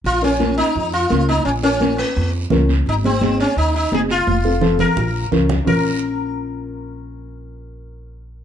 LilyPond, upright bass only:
\new Staff \with { instrumentName = "Upright bass" } { \clef bass \time 4/4 \key bes \minor \tempo 4 = 170 bes,,2 f,4 des,4 | bes,,2 f,4 des,4 | aes,,2 ees,4 ges,,4 | f,,2 bes,,4 des,4 |
bes,,1~ | bes,,1 | }